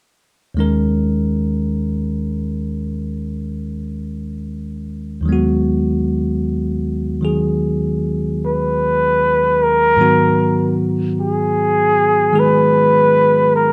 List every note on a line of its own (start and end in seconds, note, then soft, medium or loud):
0.55 5.20 D#2 soft
0.55 5.22 D#3 soft
0.55 5.26 G#3 soft
0.59 5.27 C#4 soft
0.59 5.28 A#4 soft
5.21 9.94 D#2 soft
5.21 7.20 D#3 soft
5.26 7.21 F#3 soft
5.26 9.98 G#3 soft
5.26 9.98 B3 soft
5.32 10.00 F#4 soft
7.21 9.97 D#3 soft
7.21 9.97 F#3 soft
7.21 9.98 G#4 soft
8.46 9.65 B4 medium
9.63 10.79 A#4 medium
9.96 13.73 G#2 soft
9.96 12.32 D#3 soft
9.96 13.73 F#3 soft
9.96 13.73 B3 soft
10.01 13.73 F#4 medium
11.20 12.41 G#4 medium
12.33 13.73 D#3 soft
12.33 13.73 G#3 soft
12.33 13.73 G#4 soft
12.40 13.54 B4 medium
13.56 13.73 A#4 medium